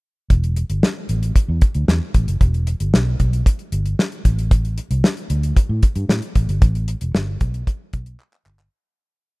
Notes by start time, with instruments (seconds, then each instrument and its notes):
0.30 fingered electric bass E1, kick, closed hi-hat
0.44 closed hi-hat
0.56 closed hi-hat
0.70 fingered electric bass G1, closed hi-hat
0.83 snare
1.09 fingered electric bass A1, closed hi-hat
1.23 closed hi-hat
1.36 kick, closed hi-hat
1.48 fingered electric bass E2
1.61 kick, closed hi-hat
1.75 fingered electric bass D2, closed hi-hat
1.88 fingered electric bass E2, snare
2.14 fingered electric bass A1, kick, closed hi-hat
2.28 fingered electric bass F#1, closed hi-hat
2.41 fingered electric bass E1, kick, closed hi-hat
2.54 closed hi-hat
2.67 closed hi-hat
2.80 fingered electric bass G1, closed hi-hat
2.94 fingered electric bass B1, snare
3.20 fingered electric bass B1, kick, closed hi-hat
3.33 closed hi-hat
3.46 kick, closed hi-hat
3.59 closed hi-hat
3.72 fingered electric bass G1, closed hi-hat
3.86 closed hi-hat
3.99 snare
4.12 closed hi-hat
4.25 fingered electric bass A1, kick, closed hi-hat
4.39 closed hi-hat
4.51 kick, closed hi-hat
4.65 closed hi-hat
4.78 closed hi-hat
4.91 fingered electric bass C2, closed hi-hat
5.04 snare
5.17 closed hi-hat
5.30 fingered electric bass D2, closed hi-hat
5.43 closed hi-hat
5.56 muted fingered electric bass stroke, kick, closed hi-hat
5.69 fingered electric bass A2
5.83 kick, closed hi-hat
5.96 fingered electric bass G2, closed hi-hat
6.09 fingered electric bass A2, snare
6.22 closed hi-hat
6.35 fingered electric bass A1, kick, closed hi-hat
6.49 fingered electric bass G1, closed hi-hat
6.62 fingered electric bass A1, kick, closed hi-hat
6.75 closed hi-hat
6.88 closed hi-hat
7.01 fingered electric bass E1, closed hi-hat
7.15 fingered electric bass G1, snare
7.41 fingered electric bass B1, kick, closed hi-hat
7.54 closed hi-hat
7.67 kick, closed hi-hat
7.93 fingered electric bass B1, kick, closed hi-hat
8.06 closed hi-hat
8.20 clap
8.33 clap
8.46 fingered electric bass G1, clap
8.59 clap